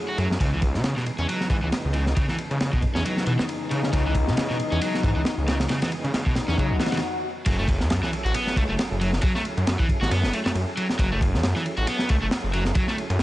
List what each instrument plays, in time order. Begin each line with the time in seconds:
Already playing: tonewheel organ F#3 A3 C#4 E4 G#4, brass ensemble A3 E4 F#4 G#4
0.09 overdriven electric guitar F#4
0.18 detuned saw bass F#2, overdriven electric guitar F#3, ride
0.30 detuned saw bass F#2, snare
0.40 detuned saw bass C#2, tonewheel organ C#3 E3 G#3 B3 D#4, overdriven electric guitar C#3, kick, ride
0.53 overdriven electric guitar E3
0.62 kick, ride
0.74 detuned saw bass C#3, snare
0.84 detuned saw bass C#3, snare, ride
0.96 overdriven electric guitar B2, snare
1.06 ride
1.18 detuned saw bass E2, overdriven electric guitar C#4, ride
1.28 overdriven electric guitar F#3, ride
1.41 snare
1.50 detuned saw bass G#2, overdriven electric guitar E3, kick, ride
1.63 detuned saw bass C#2, overdriven electric guitar E3
1.72 snare, ride
1.85 detuned saw bass C#2
1.93 overdriven electric guitar C#3, ride
2.06 brass ensemble E3 B3 C#4 D#4, snare
2.16 overdriven electric guitar C#3, kick, ride
2.28 overdriven electric guitar E3, snare
2.38 ride
2.51 detuned saw bass C#3, ride
2.60 detuned saw bass C#3, snare, ride
2.73 overdriven electric guitar B2, brass ensemble E3 B3 C#4 D#4, kick
2.82 kick, ride
2.95 detuned saw bass E2, overdriven electric guitar C#4, snare
3.05 overdriven electric guitar F#3, ride
3.17 snare
3.26 detuned saw bass B2, overdriven electric guitar E3, ride
3.39 overdriven electric guitar E3, snare
3.49 ride
3.71 overdriven electric guitar C#3, detuned saw bass C#3, ride
3.83 detuned saw bass C#3, snare
3.93 detuned saw bass C#2, overdriven electric guitar C#3, kick, ride
4.05 overdriven electric guitar E3
4.15 kick, ride
4.27 detuned saw bass C#3, snare
4.37 detuned saw bass C#3, snare, ride
4.50 overdriven electric guitar B2, snare
4.60 ride
4.72 detuned saw bass E2, overdriven electric guitar C#4, ride
4.81 overdriven electric guitar F#3, ride
4.94 snare
5.03 detuned saw bass G#2, overdriven electric guitar E3, kick, ride
5.16 detuned saw bass C#2, overdriven electric guitar E3
5.25 snare, ride
5.38 detuned saw bass C#2
5.48 overdriven electric guitar C#3, snare, ride
5.60 brass ensemble E3 B3 C#4 D#4, snare, ride
5.69 overdriven electric guitar C#3, snare, ride
5.82 overdriven electric guitar E3, snare, ride
5.92 ride
6.04 detuned saw bass C#3, ride
6.13 detuned saw bass C#3, snare, ride
6.26 overdriven electric guitar B2, brass ensemble E3 B3 C#4 D#4, kick
6.36 snare, ride
6.48 detuned saw bass E2, overdriven electric guitar C#4, snare
6.58 detuned saw bass C#3, overdriven electric guitar F#3, kick, ride, swell
6.70 detuned saw bass B1
6.80 overdriven electric guitar E3, snare, ride
6.86 snare, ride
6.92 detuned saw bass C#3, overdriven electric guitar E3, snare, ride
6.97 snare, ride
7.46 detuned saw bass F#1, tonewheel organ F#3 C#4 E4 G#4 A4, overdriven electric guitar F#3, kick, crash, ride, sub drop
7.59 overdriven electric guitar A3
7.68 kick, ride
7.80 detuned saw bass F#2, snare
7.90 detuned saw bass F#2, snare, ride
8.03 overdriven electric guitar E3, snare
8.13 ride
8.25 detuned saw bass A1, overdriven electric guitar F#4, ride
8.34 overdriven electric guitar B3, ride
8.47 snare
8.56 detuned saw bass C#2, overdriven electric guitar A3, kick, ride
8.69 detuned saw bass F#1, overdriven electric guitar A3
8.79 snare, ride
8.91 detuned saw bass F#1
9.01 overdriven electric guitar F#3, ride
9.13 snare
9.22 overdriven electric guitar F#3, kick, ride
9.35 overdriven electric guitar A3, snare
9.45 ride
9.57 detuned saw bass F#2, ride
9.67 detuned saw bass F#2, snare, ride
9.79 overdriven electric guitar E3, kick
9.89 kick, ride
10.01 detuned saw bass A1, overdriven electric guitar F#4, snare
10.11 detuned saw bass F#2, overdriven electric guitar B3, ride
10.23 detuned saw bass E1, snare
10.33 overdriven electric guitar A3, ride
10.45 detuned saw bass F#2, overdriven electric guitar A3, snare
10.55 detuned saw bass F#2, ride
10.77 overdriven electric guitar F#3, ride
10.89 snare
10.99 detuned saw bass F#1, overdriven electric guitar F#3, kick, ride
11.12 overdriven electric guitar A3
11.21 kick, ride
11.34 detuned saw bass F#2, snare
11.43 detuned saw bass F#2, snare, ride
11.56 overdriven electric guitar E3, snare
11.66 ride
11.77 detuned saw bass A1, overdriven electric guitar F#4, ride
11.87 overdriven electric guitar B3, ride
11.99 snare
12.09 detuned saw bass C#2, overdriven electric guitar A3, kick, ride
12.22 detuned saw bass F#1, overdriven electric guitar A3
12.31 snare, ride
12.43 detuned saw bass F#1
12.53 overdriven electric guitar F#3, ride
12.65 snare
12.75 overdriven electric guitar F#3, kick, ride
12.88 overdriven electric guitar A3, snare
12.98 ride
13.10 detuned saw bass F#2, ride
13.19 detuned saw bass F#2, snare, ride